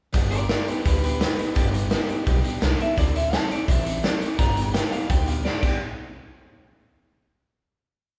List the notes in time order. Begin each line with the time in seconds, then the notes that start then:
0.12 G1 G2 D3 G3 B3 D4 G4, kick, closed hi-hat
0.31 G3 B3 D4 G4 A#4 D5, closed hi-hat
0.49 G2 D3 G3 B3 D4 G4 A#4 D5, snare, closed hi-hat
0.66 G3 B3 D4 G4 B4, muted upright bass stroke, closed hi-hat
0.84 D2 G3 B3 D4 G4 B4, kick, closed hi-hat
1.02 G3 B3 D4 G4 B4, closed hi-hat
1.19 G2 D3 G3 B3 D4 G4, snare, closed hi-hat
1.36 G3 B3 D4 G4, muted upright bass stroke, closed hi-hat
1.54 G1 G2 D3 G3 B3 D4 G4, kick, closed hi-hat
1.72 G3 B3 D4 G4, closed hi-hat
1.90 G2 D3 G3 B3 D4 G4, snare, closed hi-hat
2.07 G3 B3 D4 G4, muted upright bass stroke, closed hi-hat
2.25 B1 G3 B3 D4 G4, kick, closed hi-hat
2.44 G3 B3 D4 G4, closed hi-hat
2.61 C2 G2 D3 G3 B3 D4 G4, snare, closed hi-hat
2.78 G3 B3 D4 G4 E5, closed hi-hat
2.96 D2 D3 F#3 C4 D4 A4 D5, kick, closed hi-hat
3.14 C4 D4 A4 E5, closed hi-hat
3.32 D3 F#3 C4 D4 A4 A5, snare, closed hi-hat
3.50 C4 D4 A4 D5, muted upright bass stroke, closed hi-hat
3.66 A1 F#3 C4 D4 A4 E5, kick, closed hi-hat
3.85 C4 D4 A4, closed hi-hat
4.02 D3 F#3 C4 D4 A4 D5, snare, closed hi-hat
4.20 C4 D4 A4, muted upright bass stroke, closed hi-hat
4.39 G1 G2 D3 G3 B3 D4 G4 A#5, kick, closed hi-hat
4.56 G3 B3 D4 G4, closed hi-hat
4.73 G2 D3 G3 B3 D4 G4 G5, snare, closed hi-hat
4.92 G3 B3 D4 G4 F5, muted upright bass stroke, closed hi-hat
5.09 D2 G3 B3 D4 G4 G5, kick, closed hi-hat
5.27 G3 B3 D4 G4 F5, closed hi-hat
5.45 G2 D3 G3 B3 D4 G4 D5, snare
5.61 G1 G2 D3 G3 B3 D4 D5, kick, crash
5.66 G4